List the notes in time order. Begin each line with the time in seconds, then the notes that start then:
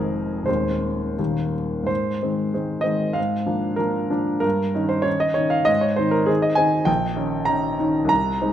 Already playing: F1 F2 D#3 G#3 C4 G#4 A#4
0.43 D#1 C5
0.47 D#2 D#3 G#3 C4
1.18 D#1 D#2 D#3 G3 A#3
1.83 G#2 C5
2.22 D#3 G#3 C4
2.54 D#3 G#3 C4
2.81 D#3 G#3 C4 D#5
3.13 G#2 F5
3.46 F3 A#3 D4
3.76 F3 A#3 D4 A#4
4.10 F3 A#3 D4
4.40 G2 A#4
4.74 D#3 C#4 D#4
4.89 C5
5.02 D#3 C#4 D#4 C#5
5.20 D#5
5.34 D#3 C#4 D#4 C#5
5.50 F5
5.65 G#2 D#5
5.81 C#5
5.96 D#3 C4 D#4 C5
6.11 A#4
6.26 D#3 C4 D#4 G#4
6.42 D#5
6.55 D#3 C4 D#4 G#5
6.85 A#1 G5
7.16 D#3 C#4 D#4
7.45 D#3 C#4 D#4 A#5
7.79 D#3 C#4 D#4
8.05 C2
8.09 A#5
8.41 G#3 C4 D#4